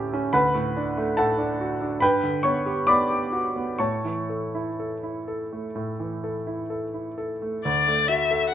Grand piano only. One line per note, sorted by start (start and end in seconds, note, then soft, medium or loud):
0.00 0.30 D2 soft
0.00 0.37 A2 soft
0.00 0.36 A3 soft
0.00 0.13 C#4 soft
0.00 0.36 G4 soft
0.00 0.36 A4 medium
0.00 0.37 E5 medium
0.00 0.36 A5 medium
0.13 0.34 C#4 soft
0.33 1.97 D2 medium
0.33 1.13 B4 medium
0.33 1.13 F#5 medium
0.33 1.16 B5 medium
0.54 0.88 A2 soft
0.77 1.09 D4 soft
0.97 1.30 A3 medium
1.17 1.51 A2 soft
1.17 1.98 A4 soft
1.17 1.98 F#5 medium
1.17 2.01 A5 medium
1.38 1.72 D4 soft
1.60 1.93 F#4 soft
1.81 2.02 D4 soft
2.00 3.76 G2 medium
2.00 2.41 B4 medium
2.00 2.41 G5 medium
2.00 2.43 B5 medium
2.23 2.57 D3 soft
2.43 2.78 B3 soft
2.43 2.84 C#5 medium
2.43 2.87 C#6 medium
2.66 3.01 G4 soft
2.87 3.23 B3 soft
2.87 3.76 D5 medium
2.87 3.76 B5 medium
2.87 3.79 D6 medium
3.10 3.46 G4 soft
3.32 3.70 F#4 soft
3.56 3.80 B3 soft
3.79 5.70 A2 soft
3.79 7.13 C#5 soft
3.79 7.13 A5 soft
3.79 7.16 C#6 medium
4.05 4.43 E3 soft
4.29 4.68 A4 soft
4.55 4.93 E4 soft
4.79 5.18 A4 soft
5.03 5.41 E4 soft
5.28 5.65 A4 soft
5.52 5.89 A3 soft
5.75 7.61 A2 soft
6.00 6.36 E3 soft
6.24 6.60 A4 soft
6.47 6.84 E4 soft
6.70 7.08 A4 soft
6.94 7.32 E4 soft
7.18 7.55 A4 soft
7.42 7.64 A3 soft
7.65 8.54 D2 medium
7.87 8.22 A3 soft
8.09 8.43 F#4 soft
8.31 8.54 A4 soft